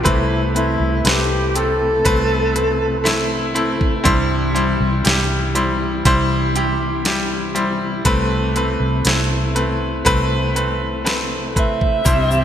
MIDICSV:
0, 0, Header, 1, 7, 480
1, 0, Start_track
1, 0, Tempo, 1000000
1, 27, Time_signature, 4, 2, 24, 8
1, 5973, End_track
2, 0, Start_track
2, 0, Title_t, "Alto saxophone"
2, 0, Program_c, 0, 65
2, 33, Note_on_c, 0, 64, 86
2, 202, Note_off_c, 0, 64, 0
2, 274, Note_on_c, 0, 64, 78
2, 515, Note_on_c, 0, 67, 84
2, 522, Note_off_c, 0, 64, 0
2, 756, Note_on_c, 0, 69, 100
2, 763, Note_off_c, 0, 67, 0
2, 1711, Note_off_c, 0, 69, 0
2, 5562, Note_on_c, 0, 76, 104
2, 5973, Note_off_c, 0, 76, 0
2, 5973, End_track
3, 0, Start_track
3, 0, Title_t, "Grand piano"
3, 0, Program_c, 1, 0
3, 0, Control_c, 1, 64, 127
3, 17, Note_on_c, 1, 57, 86
3, 20, Note_on_c, 1, 48, 67
3, 21, Note_on_c, 1, 60, 86
3, 23, Note_on_c, 1, 71, 97
3, 33, Control_c, 1, 64, 0
3, 130, Control_c, 1, 64, 127
3, 250, Note_off_c, 1, 57, 0
3, 252, Note_off_c, 1, 60, 0
3, 253, Note_off_c, 1, 71, 0
3, 263, Note_on_c, 1, 57, 74
3, 266, Note_on_c, 1, 60, 65
3, 270, Note_on_c, 1, 71, 71
3, 493, Note_off_c, 1, 57, 0
3, 494, Note_off_c, 1, 60, 0
3, 496, Note_off_c, 1, 71, 0
3, 502, Note_on_c, 1, 57, 67
3, 503, Note_on_c, 1, 60, 61
3, 507, Note_on_c, 1, 71, 77
3, 725, Note_off_c, 1, 48, 0
3, 732, Note_off_c, 1, 57, 0
3, 733, Note_off_c, 1, 60, 0
3, 735, Note_off_c, 1, 71, 0
3, 742, Note_on_c, 1, 57, 64
3, 748, Note_on_c, 1, 60, 62
3, 749, Note_on_c, 1, 69, 72
3, 972, Note_off_c, 1, 57, 0
3, 976, Note_off_c, 1, 60, 0
3, 976, Note_off_c, 1, 69, 0
3, 983, Note_on_c, 1, 57, 103
3, 987, Note_on_c, 1, 60, 91
3, 988, Note_on_c, 1, 71, 118
3, 1213, Note_off_c, 1, 57, 0
3, 1215, Note_off_c, 1, 60, 0
3, 1216, Note_off_c, 1, 71, 0
3, 1222, Note_on_c, 1, 57, 62
3, 1227, Note_on_c, 1, 60, 59
3, 1228, Note_on_c, 1, 71, 72
3, 1451, Note_off_c, 1, 57, 0
3, 1455, Note_off_c, 1, 60, 0
3, 1455, Note_off_c, 1, 71, 0
3, 1458, Note_on_c, 1, 57, 89
3, 1463, Note_on_c, 1, 60, 73
3, 1464, Note_on_c, 1, 64, 103
3, 1691, Note_off_c, 1, 57, 0
3, 1693, Note_off_c, 1, 60, 0
3, 1694, Note_off_c, 1, 64, 0
3, 1701, Note_on_c, 1, 57, 83
3, 1702, Note_on_c, 1, 60, 75
3, 1705, Note_on_c, 1, 64, 94
3, 1932, Note_off_c, 1, 57, 0
3, 1932, Note_off_c, 1, 60, 0
3, 1934, Note_off_c, 1, 64, 0
3, 1938, Note_on_c, 1, 55, 104
3, 1941, Note_on_c, 1, 43, 77
3, 1942, Note_on_c, 1, 64, 102
3, 1944, Note_on_c, 1, 72, 114
3, 1954, Control_c, 1, 64, 0
3, 2037, Control_c, 1, 64, 127
3, 2170, Note_off_c, 1, 55, 0
3, 2173, Note_off_c, 1, 64, 0
3, 2174, Note_off_c, 1, 72, 0
3, 2182, Note_on_c, 1, 55, 86
3, 2184, Note_on_c, 1, 64, 79
3, 2187, Note_on_c, 1, 72, 90
3, 2412, Note_off_c, 1, 55, 0
3, 2414, Note_off_c, 1, 64, 0
3, 2415, Note_off_c, 1, 72, 0
3, 2421, Note_on_c, 1, 55, 78
3, 2426, Note_on_c, 1, 64, 73
3, 2426, Note_on_c, 1, 67, 81
3, 2645, Note_off_c, 1, 43, 0
3, 2652, Note_off_c, 1, 55, 0
3, 2655, Note_off_c, 1, 64, 0
3, 2655, Note_off_c, 1, 67, 0
3, 2664, Note_on_c, 1, 55, 81
3, 2665, Note_on_c, 1, 64, 76
3, 2668, Note_on_c, 1, 72, 84
3, 2893, Note_off_c, 1, 55, 0
3, 2894, Note_off_c, 1, 64, 0
3, 2896, Note_off_c, 1, 72, 0
3, 2906, Note_on_c, 1, 55, 106
3, 2911, Note_on_c, 1, 64, 101
3, 2912, Note_on_c, 1, 72, 127
3, 3134, Note_off_c, 1, 55, 0
3, 3137, Note_off_c, 1, 64, 0
3, 3137, Note_off_c, 1, 72, 0
3, 3146, Note_on_c, 1, 55, 71
3, 3149, Note_on_c, 1, 64, 71
3, 3150, Note_on_c, 1, 67, 84
3, 3375, Note_off_c, 1, 55, 0
3, 3376, Note_off_c, 1, 64, 0
3, 3377, Note_off_c, 1, 67, 0
3, 3386, Note_on_c, 1, 55, 81
3, 3387, Note_on_c, 1, 64, 76
3, 3391, Note_on_c, 1, 67, 89
3, 3614, Note_off_c, 1, 55, 0
3, 3615, Note_off_c, 1, 64, 0
3, 3617, Note_off_c, 1, 67, 0
3, 3623, Note_on_c, 1, 55, 83
3, 3624, Note_on_c, 1, 64, 79
3, 3627, Note_on_c, 1, 72, 83
3, 3853, Note_off_c, 1, 55, 0
3, 3854, Note_off_c, 1, 64, 0
3, 3855, Note_off_c, 1, 72, 0
3, 3864, Note_on_c, 1, 57, 118
3, 3868, Note_on_c, 1, 48, 71
3, 3868, Note_on_c, 1, 60, 98
3, 3869, Note_on_c, 1, 71, 118
3, 3873, Control_c, 1, 64, 0
3, 3952, Control_c, 1, 64, 127
3, 4093, Note_off_c, 1, 57, 0
3, 4095, Note_off_c, 1, 60, 0
3, 4096, Note_off_c, 1, 71, 0
3, 4107, Note_on_c, 1, 57, 81
3, 4109, Note_on_c, 1, 60, 72
3, 4113, Note_on_c, 1, 71, 92
3, 4335, Note_off_c, 1, 57, 0
3, 4336, Note_off_c, 1, 60, 0
3, 4338, Note_off_c, 1, 71, 0
3, 4346, Note_on_c, 1, 57, 78
3, 4348, Note_on_c, 1, 60, 66
3, 4351, Note_on_c, 1, 64, 84
3, 4568, Note_off_c, 1, 48, 0
3, 4575, Note_off_c, 1, 57, 0
3, 4575, Note_off_c, 1, 60, 0
3, 4577, Note_off_c, 1, 64, 0
3, 4584, Note_on_c, 1, 57, 74
3, 4587, Note_on_c, 1, 60, 70
3, 4587, Note_on_c, 1, 71, 83
3, 4813, Note_off_c, 1, 57, 0
3, 4815, Note_off_c, 1, 60, 0
3, 4815, Note_off_c, 1, 71, 0
3, 4823, Note_on_c, 1, 57, 108
3, 4826, Note_on_c, 1, 60, 104
3, 4831, Note_on_c, 1, 71, 127
3, 5053, Note_off_c, 1, 57, 0
3, 5054, Note_off_c, 1, 60, 0
3, 5057, Note_off_c, 1, 71, 0
3, 5064, Note_on_c, 1, 57, 77
3, 5067, Note_on_c, 1, 60, 69
3, 5070, Note_on_c, 1, 71, 88
3, 5294, Note_off_c, 1, 57, 0
3, 5295, Note_off_c, 1, 60, 0
3, 5297, Note_off_c, 1, 71, 0
3, 5301, Note_on_c, 1, 57, 78
3, 5304, Note_on_c, 1, 60, 75
3, 5308, Note_on_c, 1, 71, 85
3, 5532, Note_off_c, 1, 57, 0
3, 5533, Note_off_c, 1, 60, 0
3, 5535, Note_off_c, 1, 71, 0
3, 5544, Note_on_c, 1, 57, 66
3, 5549, Note_on_c, 1, 60, 64
3, 5552, Note_on_c, 1, 71, 76
3, 5773, Note_off_c, 1, 57, 0
3, 5776, Note_off_c, 1, 60, 0
3, 5777, Note_off_c, 1, 71, 0
3, 5784, Note_on_c, 1, 55, 86
3, 5786, Note_on_c, 1, 43, 59
3, 5786, Note_on_c, 1, 64, 82
3, 5790, Note_on_c, 1, 72, 100
3, 5793, Control_c, 1, 64, 0
3, 5881, Control_c, 1, 64, 127
3, 5973, Note_off_c, 1, 43, 0
3, 5973, Note_off_c, 1, 55, 0
3, 5973, Note_off_c, 1, 64, 0
3, 5973, Note_off_c, 1, 72, 0
3, 5973, End_track
4, 0, Start_track
4, 0, Title_t, "Tonewheel organ"
4, 0, Program_c, 2, 16
4, 27, Note_on_c, 2, 48, 63
4, 28, Note_on_c, 2, 64, 72
4, 28, Note_on_c, 2, 71, 58
4, 31, Note_on_c, 2, 57, 58
4, 1928, Note_off_c, 2, 71, 0
4, 1930, Note_off_c, 2, 57, 0
4, 1955, Note_on_c, 2, 55, 58
4, 1956, Note_on_c, 2, 52, 60
4, 3848, Note_off_c, 2, 48, 0
4, 3852, Note_off_c, 2, 52, 0
4, 3852, Note_off_c, 2, 55, 0
4, 3867, Note_on_c, 2, 48, 61
4, 3867, Note_on_c, 2, 57, 61
4, 3867, Note_on_c, 2, 71, 58
4, 5768, Note_off_c, 2, 48, 0
4, 5768, Note_off_c, 2, 57, 0
4, 5768, Note_off_c, 2, 64, 0
4, 5768, Note_off_c, 2, 71, 0
4, 5787, Note_on_c, 2, 52, 63
4, 5789, Note_on_c, 2, 55, 58
4, 5789, Note_on_c, 2, 67, 68
4, 5792, Note_on_c, 2, 60, 58
4, 5973, Note_off_c, 2, 52, 0
4, 5973, Note_off_c, 2, 55, 0
4, 5973, Note_off_c, 2, 60, 0
4, 5973, Note_off_c, 2, 67, 0
4, 5973, End_track
5, 0, Start_track
5, 0, Title_t, "Cello section"
5, 0, Program_c, 3, 48
5, 5785, Note_on_c, 3, 48, 78
5, 5785, Note_on_c, 3, 60, 85
5, 5973, Note_off_c, 3, 48, 0
5, 5973, Note_off_c, 3, 60, 0
5, 5973, End_track
6, 0, Start_track
6, 0, Title_t, "Fingered electric bass"
6, 0, Program_c, 4, 33
6, 29, Note_on_c, 4, 36, 95
6, 369, Note_off_c, 4, 36, 0
6, 384, Note_on_c, 4, 36, 88
6, 497, Note_off_c, 4, 36, 0
6, 501, Note_on_c, 4, 36, 96
6, 965, Note_off_c, 4, 36, 0
6, 988, Note_on_c, 4, 36, 94
6, 1928, Note_off_c, 4, 36, 0
6, 1948, Note_on_c, 4, 36, 112
6, 2288, Note_off_c, 4, 36, 0
6, 2306, Note_on_c, 4, 36, 93
6, 2418, Note_off_c, 4, 36, 0
6, 2428, Note_on_c, 4, 36, 89
6, 2888, Note_off_c, 4, 36, 0
6, 2906, Note_on_c, 4, 36, 88
6, 3847, Note_off_c, 4, 36, 0
6, 3866, Note_on_c, 4, 36, 98
6, 4208, Note_off_c, 4, 36, 0
6, 4224, Note_on_c, 4, 36, 79
6, 4337, Note_off_c, 4, 36, 0
6, 4346, Note_on_c, 4, 36, 91
6, 4807, Note_off_c, 4, 36, 0
6, 4829, Note_on_c, 4, 36, 81
6, 5769, Note_off_c, 4, 36, 0
6, 5788, Note_on_c, 4, 36, 100
6, 5973, Note_off_c, 4, 36, 0
6, 5973, End_track
7, 0, Start_track
7, 0, Title_t, "Drums"
7, 27, Note_on_c, 9, 36, 103
7, 27, Note_on_c, 9, 42, 86
7, 75, Note_off_c, 9, 36, 0
7, 75, Note_off_c, 9, 42, 0
7, 269, Note_on_c, 9, 42, 56
7, 317, Note_off_c, 9, 42, 0
7, 503, Note_on_c, 9, 42, 84
7, 514, Note_on_c, 9, 38, 107
7, 551, Note_off_c, 9, 42, 0
7, 562, Note_off_c, 9, 38, 0
7, 747, Note_on_c, 9, 42, 71
7, 795, Note_off_c, 9, 42, 0
7, 986, Note_on_c, 9, 42, 91
7, 987, Note_on_c, 9, 36, 91
7, 1034, Note_off_c, 9, 42, 0
7, 1035, Note_off_c, 9, 36, 0
7, 1228, Note_on_c, 9, 42, 66
7, 1276, Note_off_c, 9, 42, 0
7, 1470, Note_on_c, 9, 42, 96
7, 1473, Note_on_c, 9, 38, 98
7, 1518, Note_off_c, 9, 42, 0
7, 1521, Note_off_c, 9, 38, 0
7, 1707, Note_on_c, 9, 42, 67
7, 1755, Note_off_c, 9, 42, 0
7, 1828, Note_on_c, 9, 36, 92
7, 1876, Note_off_c, 9, 36, 0
7, 1946, Note_on_c, 9, 36, 100
7, 1946, Note_on_c, 9, 42, 89
7, 1994, Note_off_c, 9, 36, 0
7, 1994, Note_off_c, 9, 42, 0
7, 2188, Note_on_c, 9, 42, 57
7, 2236, Note_off_c, 9, 42, 0
7, 2423, Note_on_c, 9, 42, 83
7, 2434, Note_on_c, 9, 38, 104
7, 2471, Note_off_c, 9, 42, 0
7, 2482, Note_off_c, 9, 38, 0
7, 2666, Note_on_c, 9, 42, 72
7, 2714, Note_off_c, 9, 42, 0
7, 2906, Note_on_c, 9, 36, 83
7, 2906, Note_on_c, 9, 42, 85
7, 2954, Note_off_c, 9, 36, 0
7, 2954, Note_off_c, 9, 42, 0
7, 3147, Note_on_c, 9, 42, 61
7, 3195, Note_off_c, 9, 42, 0
7, 3385, Note_on_c, 9, 42, 92
7, 3388, Note_on_c, 9, 38, 100
7, 3433, Note_off_c, 9, 42, 0
7, 3436, Note_off_c, 9, 38, 0
7, 3627, Note_on_c, 9, 42, 65
7, 3675, Note_off_c, 9, 42, 0
7, 3864, Note_on_c, 9, 42, 83
7, 3866, Note_on_c, 9, 36, 97
7, 3912, Note_off_c, 9, 42, 0
7, 3914, Note_off_c, 9, 36, 0
7, 4108, Note_on_c, 9, 42, 57
7, 4156, Note_off_c, 9, 42, 0
7, 4343, Note_on_c, 9, 42, 84
7, 4354, Note_on_c, 9, 38, 103
7, 4391, Note_off_c, 9, 42, 0
7, 4402, Note_off_c, 9, 38, 0
7, 4588, Note_on_c, 9, 42, 70
7, 4636, Note_off_c, 9, 42, 0
7, 4828, Note_on_c, 9, 36, 81
7, 4829, Note_on_c, 9, 42, 85
7, 4876, Note_off_c, 9, 36, 0
7, 4877, Note_off_c, 9, 42, 0
7, 5070, Note_on_c, 9, 42, 62
7, 5118, Note_off_c, 9, 42, 0
7, 5311, Note_on_c, 9, 42, 85
7, 5314, Note_on_c, 9, 38, 98
7, 5359, Note_off_c, 9, 42, 0
7, 5362, Note_off_c, 9, 38, 0
7, 5550, Note_on_c, 9, 36, 94
7, 5553, Note_on_c, 9, 42, 64
7, 5598, Note_off_c, 9, 36, 0
7, 5601, Note_off_c, 9, 42, 0
7, 5670, Note_on_c, 9, 36, 82
7, 5718, Note_off_c, 9, 36, 0
7, 5786, Note_on_c, 9, 82, 73
7, 5788, Note_on_c, 9, 36, 93
7, 5788, Note_on_c, 9, 42, 88
7, 5834, Note_off_c, 9, 82, 0
7, 5836, Note_off_c, 9, 36, 0
7, 5836, Note_off_c, 9, 42, 0
7, 5910, Note_on_c, 9, 82, 49
7, 5958, Note_off_c, 9, 82, 0
7, 5973, End_track
0, 0, End_of_file